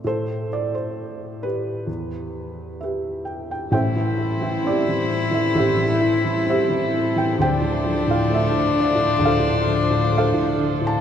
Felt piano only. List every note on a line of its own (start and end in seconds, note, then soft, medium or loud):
0.04 1.84 A2 medium
0.04 1.85 A4 medium
0.04 0.48 C5 medium
0.53 0.73 D5 medium
0.75 1.45 C5 medium
1.43 2.82 G4 soft
1.43 2.77 B4 medium
1.87 3.68 E2 soft
2.81 3.71 G4 soft
2.81 3.70 B4 soft
2.81 3.24 E5 medium
3.25 3.50 G5 medium
3.51 3.71 G5 medium
3.71 5.54 A1 medium
3.71 5.54 A2 medium
3.71 5.53 C5 medium
3.71 4.41 E5 medium
3.71 4.44 G5 medium
3.96 4.40 E3 soft
4.18 5.98 E4 soft
4.41 4.87 E3 soft
4.41 4.66 E5 medium
4.64 5.09 C4 medium
4.64 5.31 D5 medium
4.69 5.57 G4 soft
4.88 5.30 E3 soft
5.10 6.44 C4 soft
5.31 5.75 E3 medium
5.31 5.55 E5 medium
5.55 7.35 A1 medium
5.55 7.35 A2 medium
5.55 6.49 G4 medium
5.55 6.48 E5 medium
5.59 6.49 C5 medium
5.77 6.23 E3 soft
6.00 7.35 E4 soft
6.24 6.68 E3 soft
6.45 6.92 C4 medium
6.50 7.37 G4 medium
6.50 7.37 C5 medium
6.50 7.20 E5 medium
6.69 7.15 E3 soft
6.93 7.38 C4 soft
7.16 7.39 E3 soft
7.16 7.39 G5 medium
7.38 9.17 D1 medium
7.38 9.18 D2 medium
7.38 8.12 G5 medium
7.43 9.21 C5 medium
7.62 8.06 A2 medium
7.85 9.65 F3 medium
8.07 8.50 A2 medium
8.07 8.31 F5 medium
8.30 10.10 A3 medium
8.35 8.76 E5 medium
8.52 8.94 A2 soft
8.74 10.55 D3 medium
8.80 9.21 D5 medium
8.95 9.38 A2 medium
9.18 11.00 D1 medium
9.18 11.00 D2 medium
9.25 10.17 A4 medium
9.25 10.17 C5 medium
9.25 10.16 F5 medium
9.40 9.89 A2 soft
9.66 11.01 F3 medium
9.91 10.32 A2 medium
10.12 11.01 A3 soft
10.18 11.01 A4 medium
10.18 11.01 C5 medium
10.18 10.81 F5 medium
10.34 10.80 A2 soft
10.58 11.01 D3 medium
10.81 11.01 A2 medium
10.87 11.01 A5 medium